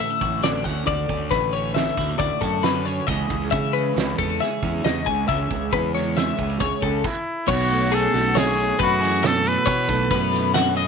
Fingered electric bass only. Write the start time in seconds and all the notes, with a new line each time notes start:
0.22 A1
0.45 A1
0.66 D2
0.87 D2
1.09 D2
1.31 A1
1.98 D2
2.19 D2
2.41 F#2
3.09 C#2
3.30 C#2
3.52 C#3
3.96 C#2
4.18 E2
4.63 E2
4.84 E2
5.07 C#2
5.29 C#2
5.51 C#2
5.73 E2
6.39 C#2
6.61 C#2
6.83 C#2
7.49 B1
8.14 B1
8.79 F#2
9.67 B2
9.89 B1
10.11 F#2